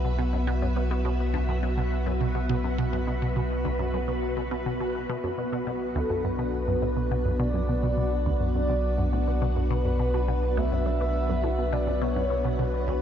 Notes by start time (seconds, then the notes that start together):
Already playing: B1 B3 F#4 B4 E5
0.05 B2
0.19 B2
0.33 F#2
0.47 B2
0.62 F#2
0.76 B2
0.91 B2
1.05 B2
1.34 D2
1.48 F#2
1.63 F#2
1.77 B2
2.06 F#2
2.21 B2
2.35 B2
2.49 B2
2.64 F#2
2.78 B2
2.93 F#2
3.07 B2
3.22 B2
3.36 B2
3.65 D2
3.79 F#2
3.94 F#2
4.08 B2
4.37 B2
4.51 B2
4.66 B2
4.81 B2
5.09 B1 B2
5.24 F#2
5.38 B2
5.52 B2
5.67 B2
5.92 D2 D4 A4
6.10 F#2
6.24 F#2 B4
6.39 B2
6.68 F#2
6.82 A2
6.97 B2
7.11 B2
7.25 F#2
7.39 B2 D5
7.54 F#2
7.69 B2
7.83 B2
7.97 B2
8.26 D2
8.40 F#2
8.55 F#2 D5
8.69 B2
8.98 F#2
9.13 A2
9.28 B2
9.42 B2
9.56 F#2
9.71 B2 B4
9.85 F#2
9.99 B2
10.14 B2
10.28 B2
10.57 D2 E5
10.72 F#2
10.86 F#2
11.01 B2
11.30 F#2
11.44 A2
11.59 B2
11.72 B2 D5
11.87 F#2
12.02 B2 C#5
12.16 F#2
12.30 B2
12.45 B2
12.59 B2 B4
12.88 D2